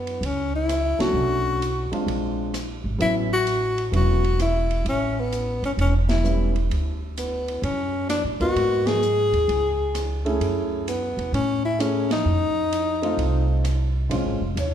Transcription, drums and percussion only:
0.07 ride soft
0.23 ride soft
0.69 cross-stick medium
0.69 hi-hat pedal medium
0.69 ride medium
1.00 snare medium
1.00 ride medium
1.62 hi-hat pedal soft
1.62 ride soft
1.93 ride soft
2.08 ride soft
2.54 cross-stick medium
2.54 hi-hat pedal medium
2.54 ride medium
3.00 ride medium
3.47 hi-hat pedal soft
3.47 ride medium
3.78 ride soft
3.93 ride medium
4.24 ride soft
4.39 cross-stick medium
4.39 hi-hat pedal soft
4.39 ride medium
4.71 ride soft
4.86 ride soft
5.32 hi-hat pedal medium
5.32 ride soft
5.64 ride soft
5.79 ride soft
6.09 snare medium
6.09 ride medium
6.25 hi-hat pedal soft
6.56 ride soft
6.71 ride soft
7.17 hi-hat pedal soft
7.17 ride medium
7.48 ride soft
7.63 ride medium
8.09 cross-stick medium
8.09 snare soft
8.09 hi-hat pedal medium
8.09 ride medium
8.40 kick soft
8.40 ride soft
8.56 ride soft
8.87 snare medium
8.87 ride medium
9.02 hi-hat pedal medium
9.34 ride soft
9.49 ride soft
9.95 cross-stick medium
9.95 hi-hat pedal soft
9.95 ride medium
10.26 ride soft
10.41 ride medium
10.88 hi-hat pedal medium
10.88 ride medium
11.19 ride soft
11.34 ride soft
11.80 cross-stick medium
11.80 hi-hat pedal medium
11.80 ride medium
12.11 snare medium
12.11 ride medium
12.72 hi-hat pedal soft
12.72 ride medium
13.03 ride soft
13.19 ride soft
13.64 cross-stick medium
13.64 hi-hat pedal soft
13.64 ride medium
14.11 ride medium
14.57 hi-hat pedal soft
14.57 ride medium

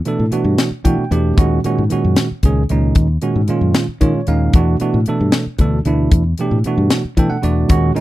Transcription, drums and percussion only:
0.05 closed hi-hat medium
0.32 closed hi-hat medium
0.58 snare medium
0.58 closed hi-hat medium
0.85 kick medium
0.85 closed hi-hat medium
1.12 closed hi-hat medium
1.38 kick loud
1.38 closed hi-hat medium
1.64 closed hi-hat medium
1.90 closed hi-hat medium
2.16 snare medium
2.16 closed hi-hat medium
2.43 kick medium
2.43 closed hi-hat medium
2.69 closed hi-hat medium
2.95 kick loud
2.95 closed hi-hat medium
3.22 closed hi-hat medium
3.48 closed hi-hat medium
3.74 snare medium
3.74 closed hi-hat medium
4.01 kick medium
4.01 closed hi-hat medium
4.27 closed hi-hat medium
4.53 kick loud
4.53 closed hi-hat medium
4.80 closed hi-hat medium
5.06 closed hi-hat medium
5.32 snare medium
5.32 closed hi-hat medium
5.58 kick medium
5.58 closed hi-hat medium
5.85 closed hi-hat medium
6.11 kick loud
6.11 closed hi-hat medium
6.38 closed hi-hat medium
6.64 closed hi-hat medium
6.90 snare loud
6.90 closed hi-hat medium
7.17 kick medium
7.17 closed hi-hat medium
7.43 closed hi-hat medium
7.69 kick loud
7.69 closed hi-hat medium
7.96 closed hi-hat medium

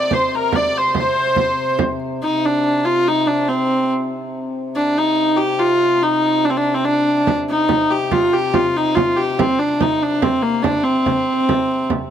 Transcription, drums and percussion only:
0.11 frame drum medium
0.52 frame drum medium
0.95 frame drum medium
1.15 frame drum soft
1.36 frame drum medium
1.58 frame drum soft
1.79 frame drum medium
2.00 frame drum soft
7.27 frame drum medium
7.69 frame drum medium
8.11 frame drum medium
8.54 frame drum medium
8.97 frame drum medium
9.39 frame drum medium
9.81 frame drum medium
10.22 frame drum medium
10.64 frame drum medium
11.06 frame drum medium
11.49 frame drum medium
11.90 frame drum medium

